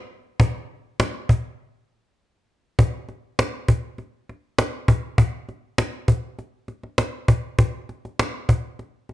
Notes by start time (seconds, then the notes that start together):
0.40 cajon bass
1.00 cajon slap
1.29 cajon bass
2.79 cajon bass
3.09 cajon slap
3.39 cajon slap
3.68 cajon bass
3.98 cajon slap
4.29 cajon slap
4.58 cajon slap
4.88 cajon bass
5.18 cajon bass
5.49 cajon slap
5.78 cajon slap
6.08 cajon bass
6.39 cajon slap
6.68 cajon slap
6.83 cajon slap
6.98 cajon slap
7.28 cajon bass
7.59 cajon bass
7.89 cajon slap
8.05 cajon slap
8.19 cajon slap
8.49 cajon bass
8.79 cajon slap
9.09 cajon slap